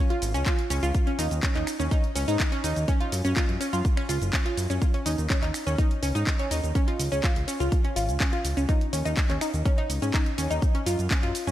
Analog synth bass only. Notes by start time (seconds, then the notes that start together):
0.22 G#1
0.34 C#2
0.70 C#2
0.83 C#2
1.19 D#2
1.31 D#2
1.55 D#2
1.80 D#2
2.15 C#2
2.28 G#2
2.64 D#2
2.76 D#2
3.12 F#2
3.25 F#2
3.49 F#2
3.73 F#2
4.09 C#2
4.22 F#1
4.58 F#2
4.70 F#2
5.06 D#2
5.18 D#2
5.43 D#2
5.67 D#2
6.03 C#2
6.15 G#2
6.51 D#2
6.64 D#2
6.99 C#2
7.12 C#2
7.36 C#2
7.60 C#2
7.96 G#1
8.09 C#2
8.45 C#2
8.57 C#2
8.93 D#2
9.05 D#2
9.30 D#2
9.54 D#2
9.90 C#2
10.02 G#2
10.38 D#2
10.51 D#2
10.86 F#2
10.99 F#2
11.23 F#2
11.47 F#2